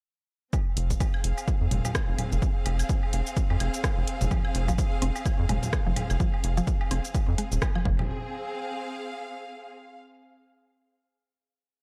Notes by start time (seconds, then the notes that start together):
0.53 C4, kick, low woodblock, shaker
0.73 F5
0.77 F1, closed hi-hat
0.83 G#4
0.90 kick, shaker
1.00 kick, low woodblock, shaker
1.14 high woodblock
1.24 F1, closed hi-hat
1.38 low woodblock, shaker
1.48 kick, shaker
1.61 F2
1.71 F1, closed hi-hat, low conga
1.85 low conga, low woodblock, shaker
1.95 kick, cross-stick, high woodblock, shaker
2.09 F1
2.18 closed hi-hat, low conga, low woodblock
2.32 F1, shaker
2.42 kick, shaker
2.66 F1, closed hi-hat, low woodblock
2.79 high woodblock, shaker
2.89 kick, shaker
3.03 low woodblock
3.13 F1, closed hi-hat
3.27 shaker
3.37 kick, shaker
3.50 F2, low woodblock
3.60 F1, closed hi-hat, high woodblock
3.74 shaker
3.84 kick, cross-stick, low woodblock, shaker
3.98 F1
4.08 closed hi-hat
4.21 F1, low conga, shaker
4.31 F3, kick, low woodblock, shaker
4.45 high woodblock
4.55 F1, closed hi-hat
4.68 F3, kick, low woodblock, shaker
4.78 kick, shaker
5.02 F1 C4, closed hi-hat
5.16 low woodblock, shaker
5.26 kick, high woodblock, shaker
5.39 F2
5.49 F1 G#3, closed hi-hat, low conga, low woodblock
5.63 low conga, shaker
5.73 kick, cross-stick, shaker
5.86 F1 F3
5.96 closed hi-hat, low conga, low woodblock
6.10 F1, high woodblock, shaker
6.20 F3, kick, shaker
6.34 low woodblock
6.44 F1, closed hi-hat
6.57 F3, closed hi-hat, shaker
6.67 kick, shaker
6.81 low woodblock
6.91 F1 C4, closed hi-hat, high woodblock
7.05 shaker
7.15 kick, low woodblock, shaker
7.28 F2
7.38 G#3, closed hi-hat
7.52 D#1, shaker
7.62 kick, cross-stick, low woodblock, shaker
7.75 F3, high woodblock
7.85 F1 F3 C4, kick
7.94 G#4
7.99 low conga, low woodblock
8.25 F5